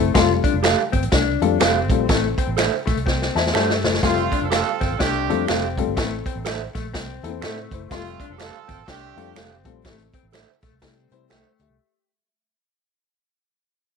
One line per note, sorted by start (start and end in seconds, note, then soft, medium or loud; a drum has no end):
0.00 0.11 F#1 medium
0.00 0.12 A3 medium
0.14 0.39 F1 loud
0.14 0.88 G3 medium
0.14 0.88 A3 medium
0.14 0.88 C4 medium
0.14 0.31 F4 medium
0.14 0.88 F4 medium
0.14 0.88 A4 medium
0.14 kick loud
0.14 snare loud
0.14 closed hi-hat loud
0.44 0.55 D4 medium
0.44 kick loud
0.44 closed hi-hat medium
0.54 0.73 F1 medium
0.63 0.79 G4 medium
0.63 0.79 A4 medium
0.63 0.80 F5 medium
0.63 finger snap loud
0.63 snare loud
0.63 closed hi-hat loud
0.92 1.01 G1 loud
0.92 1.03 C4 medium
0.92 kick medium
0.92 closed hi-hat medium
1.03 1.10 A1 medium
1.03 closed hi-hat medium
1.12 1.36 C2 medium
1.12 1.57 D4 medium
1.12 kick loud
1.12 snare loud
1.12 closed hi-hat loud
1.42 1.57 F2 loud
1.42 1.73 G3 medium
1.42 1.73 A3 medium
1.42 1.73 C4 medium
1.42 1.73 F4 medium
1.42 1.73 A4 loud
1.42 closed hi-hat medium
1.60 1.89 F1 medium
1.60 2.06 C4 medium
1.60 1.76 G4 loud
1.60 1.77 A4 medium
1.60 1.77 F5 loud
1.60 finger snap loud
1.60 snare loud
1.60 closed hi-hat medium
1.89 2.05 A#1 medium
1.89 2.04 G3 medium
1.89 2.04 A3 medium
1.89 2.04 C4 medium
1.89 2.04 F4 medium
1.89 2.04 A4 medium
1.89 kick loud
1.89 closed hi-hat medium
2.09 2.33 A1 loud
2.09 2.26 A3 medium
2.09 2.82 C4 medium
2.09 2.82 E4 medium
2.09 2.82 A4 loud
2.09 kick loud
2.09 snare loud
2.09 closed hi-hat loud
2.38 2.49 C4 medium
2.38 kick medium
2.38 closed hi-hat medium
2.48 2.67 A1 medium
2.57 2.73 A4 medium
2.57 2.74 C5 medium
2.57 2.74 E5 medium
2.57 finger snap loud
2.57 snare loud
2.57 closed hi-hat loud
2.87 2.95 A#1 loud
2.87 2.98 A3 loud
2.87 kick medium
2.87 snare soft
2.87 closed hi-hat medium
2.96 3.28 C2 medium
2.96 closed hi-hat medium
3.06 3.51 C4 medium
3.06 kick loud
3.06 snare medium
3.22 snare medium
3.35 3.51 E2 medium
3.35 3.54 C5 medium
3.35 3.53 E5 medium
3.35 3.53 A5 medium
3.35 snare medium
3.46 snare medium
3.53 3.85 G2 loud
3.53 4.00 A3 medium
3.53 3.83 G4 medium
3.53 3.70 A4 medium
3.53 3.71 C5 medium
3.53 3.82 E5 medium
3.53 3.71 E5 medium
3.53 4.00 A5 medium
3.53 finger snap loud
3.53 snare loud
3.70 snare medium
3.83 3.99 F#1 medium
3.83 4.30 E4 medium
3.83 4.30 C5 medium
3.83 snare loud
3.94 snare medium
4.03 4.27 F1 loud
4.03 4.75 G3 medium
4.03 4.76 A3 medium
4.03 4.40 A3 loud
4.03 4.75 C4 medium
4.03 4.40 C4 loud
4.03 4.39 F4 loud
4.03 4.20 F4 medium
4.03 4.76 F4 medium
4.03 4.76 A4 medium
4.03 kick loud
4.03 snare loud
4.03 closed hi-hat loud
4.17 closed hi-hat medium
4.32 4.43 D4 medium
4.32 kick loud
4.32 closed hi-hat medium
4.42 4.61 F1 loud
4.42 4.50 C4 medium
4.42 4.49 F4 medium
4.42 4.49 A4 medium
4.50 4.97 C4 medium
4.50 4.97 F4 loud
4.50 4.67 G4 medium
4.50 4.97 A4 loud
4.50 4.68 A4 medium
4.50 4.68 F5 loud
4.50 finger snap medium
4.50 snare loud
4.50 closed hi-hat loud
4.81 4.89 G1 loud
4.81 4.91 C4 medium
4.81 kick loud
4.81 snare soft
4.81 closed hi-hat medium
4.91 4.98 A1 medium
4.99 5.31 C2 loud
4.99 5.45 A3 loud
4.99 5.45 C4 loud
4.99 5.45 D4 medium
4.99 5.45 G4 loud
4.99 kick loud
4.99 snare loud
4.99 closed hi-hat loud
5.29 5.45 F2 loud
5.29 5.61 G3 loud
5.29 5.61 A3 medium
5.29 5.61 C4 medium
5.29 5.61 F4 medium
5.29 5.61 A4 loud
5.29 closed hi-hat medium
5.47 5.80 F1 medium
5.47 5.94 C4 medium
5.47 5.64 G4 medium
5.47 5.65 A4 medium
5.47 5.65 F5 medium
5.47 finger snap loud
5.47 snare loud
5.47 closed hi-hat medium
5.78 5.91 G3 medium
5.78 5.91 A3 medium
5.78 5.92 C4 medium
5.78 5.92 F4 medium
5.78 5.92 A4 medium
5.78 kick loud
5.78 closed hi-hat medium
5.87 5.95 G1 medium
5.97 6.21 A1 loud
5.97 6.13 A3 medium
5.97 6.04 B3 medium
5.97 6.70 E4 medium
5.97 6.70 A4 loud
5.97 kick loud
5.97 snare loud
5.97 closed hi-hat loud
6.03 6.73 C4 medium
6.26 6.37 C4 medium
6.26 kick medium
6.26 closed hi-hat medium
6.36 6.67 A1 medium
6.45 6.61 A4 medium
6.45 6.62 C5 medium
6.45 6.62 E5 medium
6.45 finger snap loud
6.45 snare loud
6.45 closed hi-hat loud
6.75 6.94 A#1 medium
6.75 6.85 A3 medium
6.75 kick medium
6.75 snare soft
6.75 closed hi-hat medium
6.94 7.18 C2 loud
6.94 7.39 C4 medium
6.94 kick loud
6.94 snare loud
6.94 closed hi-hat loud
7.23 7.44 E2 loud
7.23 7.28 A#3 medium
7.23 7.42 E4 medium
7.23 7.41 A4 loud
7.23 closed hi-hat medium
7.29 7.42 C4 loud
7.42 7.66 A2 loud
7.42 7.88 A3 medium
7.42 7.71 C4 medium
7.42 7.58 A4 medium
7.42 7.70 A4 medium
7.42 7.58 C5 medium
7.42 7.59 E5 medium
7.42 finger snap loud
7.42 snare loud
7.42 closed hi-hat medium
7.71 7.87 F#1 medium
7.71 8.18 E4 medium
7.71 8.18 C5 medium
7.71 kick loud
7.71 closed hi-hat medium
7.91 8.15 F1 loud
7.91 8.64 G3 medium
7.91 8.27 A3 loud
7.91 8.64 A3 medium
7.91 8.27 C4 loud
7.91 8.64 C4 medium
7.91 8.27 F4 loud
7.91 8.07 F4 medium
7.91 8.64 F4 medium
7.91 8.64 A4 medium
7.91 kick loud
7.91 snare loud
7.91 closed hi-hat loud
8.05 closed hi-hat medium
8.20 8.31 D4 medium
8.20 kick medium
8.20 closed hi-hat medium
8.29 8.49 F1 medium
8.29 8.37 C4 medium
8.29 8.37 F4 medium
8.29 8.37 A4 medium
8.38 8.85 C4 loud
8.38 8.85 F4 loud
8.38 8.55 G4 medium
8.38 8.85 A4 loud
8.38 8.55 A4 medium
8.38 8.56 F5 medium
8.38 finger snap loud
8.38 snare loud
8.38 closed hi-hat loud
8.68 8.76 G1 loud
8.68 8.79 C4 medium
8.68 kick medium
8.68 snare soft
8.68 closed hi-hat medium
8.78 8.86 A1 medium
8.87 9.12 C2 loud
8.87 9.33 A3 loud
8.87 9.33 C4 loud
8.87 9.33 D4 medium
8.87 9.33 G4 loud
8.87 kick medium
8.87 snare loud
8.87 closed hi-hat loud
9.16 9.32 F2 medium
9.16 9.48 G3 loud
9.16 9.48 A3 medium
9.16 9.48 C4 medium
9.16 9.48 F4 loud
9.16 9.48 A4 loud
9.16 closed hi-hat medium
9.35 9.65 F1 medium
9.35 9.82 C4 medium
9.35 9.52 G4 medium
9.35 9.53 A4 loud
9.35 9.53 F5 medium
9.35 finger snap loud
9.35 snare loud
9.35 closed hi-hat medium
9.65 9.81 A#1 medium
9.65 9.79 G3 medium
9.65 9.79 A3 medium
9.65 9.79 C4 medium
9.65 9.79 F4 medium
9.65 9.79 A4 loud
9.65 kick loud
9.65 closed hi-hat medium
9.85 10.09 A1 loud
9.85 10.01 A3 medium
9.85 10.58 C4 medium
9.85 10.58 E4 medium
9.85 9.92 G4 medium
9.85 kick loud
9.85 snare loud
9.85 closed hi-hat loud
9.91 10.61 A4 medium
9.99 closed hi-hat medium
10.14 10.25 C4 medium
10.14 kick loud
10.14 closed hi-hat medium
10.23 10.43 A1 loud
10.33 10.49 A4 medium
10.33 10.50 C5 medium
10.33 10.50 E5 medium
10.33 finger snap loud
10.33 snare loud
10.33 closed hi-hat loud
10.62 10.71 A#1 medium
10.62 10.74 A3 medium
10.62 kick loud
10.62 snare soft
10.62 closed hi-hat medium
10.72 10.80 C2 medium
10.82 11.06 C3 loud
10.82 11.06 G3 medium
10.82 11.06 A3 medium
10.82 11.28 C4 medium
10.82 11.06 C4 loud
10.82 11.06 E4 medium
10.82 11.06 A4 loud
10.82 kick loud
10.82 snare loud
10.82 closed hi-hat loud
11.11 11.27 C3 loud
11.11 11.43 G3 medium
11.11 11.43 A3 medium
11.11 11.43 C4 medium
11.11 11.43 E4 medium
11.11 11.31 C5 loud
11.11 closed hi-hat medium
11.30 11.42 C2 loud
11.30 11.76 A3 loud
11.30 11.46 A4 medium
11.30 11.47 C5 medium
11.30 11.47 E5 medium
11.30 11.58 G5 medium
11.30 finger snap loud
11.30 snare loud
11.30 closed hi-hat medium
11.60 11.67 D2 loud
11.60 12.07 G4 medium
11.60 12.06 E5 medium
11.60 closed hi-hat medium
11.69 11.77 C2 medium